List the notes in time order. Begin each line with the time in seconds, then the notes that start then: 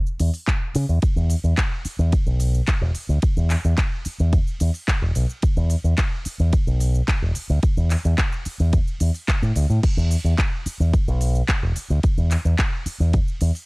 0.07 shaker
0.20 E2, open hi-hat, shaker
0.34 open hi-hat, shaker
0.47 kick, clap, shaker
0.75 C#3, open hi-hat, shaker
0.89 E2, shaker
1.02 kick, ride, shaker
1.16 E2, shaker
1.30 open hi-hat, shaker
1.44 E2, shaker
1.57 kick, clap, ride, shaker
1.85 muted fingered electric bass stroke, open hi-hat, shaker
1.99 E2, shaker
2.12 muted fingered electric bass stroke, kick, ride, shaker
2.26 B1, shaker
2.40 open hi-hat, shaker
2.54 shaker
2.67 kick, clap, ride, shaker
2.81 E1
2.95 muted fingered electric bass stroke, open hi-hat, shaker
3.09 D2, shaker
3.22 kick, ride, shaker
3.37 E2, shaker
3.50 clap, open hi-hat, shaker
3.64 E2, shaker
3.78 kick, clap, ride, shaker
4.05 muted fingered electric bass stroke, open hi-hat, shaker
4.20 E2, shaker
4.33 kick, ride, shaker
4.47 shaker
4.60 E2, open hi-hat, shaker
4.74 open hi-hat, shaker
4.88 kick, clap, ride, shaker
5.02 E1
5.15 B1, open hi-hat, shaker
5.29 shaker
5.42 muted fingered electric bass stroke, kick, ride, shaker
5.57 E2, shaker
5.70 open hi-hat, shaker
5.84 E2, shaker
5.98 kick, clap, ride, shaker
6.25 muted fingered electric bass stroke, open hi-hat, shaker
6.39 E2, shaker
6.53 kick, ride, shaker
6.67 B1, shaker
6.80 open hi-hat, shaker
6.94 shaker
7.08 kick, clap, ride, shaker
7.22 E1
7.35 open hi-hat, shaker
7.50 D2, shaker
7.63 kick, ride, shaker
7.77 E2, shaker
7.90 clap, open hi-hat, shaker
8.05 E2, shaker
8.18 kick, clap, ride, shaker
8.32 shaker
8.45 muted fingered electric bass stroke, open hi-hat, shaker
8.60 E2, shaker
8.73 kick, ride, shaker
8.88 shaker
9.00 E2, open hi-hat, shaker
9.15 open hi-hat, shaker
9.28 kick, clap, ride, shaker
9.42 A2, shaker
9.56 D2, open hi-hat, shaker
9.70 A2, shaker
9.83 muted fingered electric bass stroke, kick, ride, crash, shaker
9.97 E2, shaker
10.11 open hi-hat, shaker
10.24 E2, shaker
10.38 kick, clap, ride, shaker
10.66 muted fingered electric bass stroke, open hi-hat, shaker
10.80 E2, shaker
10.93 muted fingered electric bass stroke, kick, ride, shaker
11.08 B1, shaker
11.21 open hi-hat, shaker
11.35 shaker
11.48 kick, clap, ride, shaker
11.63 E1
11.76 muted fingered electric bass stroke, open hi-hat, shaker
11.90 D2, shaker
12.03 muted fingered electric bass stroke, kick, ride, shaker
12.18 E2, shaker
12.31 clap, open hi-hat, shaker
12.45 E2, shaker
12.58 kick, clap, ride, shaker
12.86 muted fingered electric bass stroke, open hi-hat, shaker
13.00 E2, shaker
13.13 kick, ride, shaker
13.28 shaker
13.41 E2, open hi-hat, shaker
13.55 open hi-hat, shaker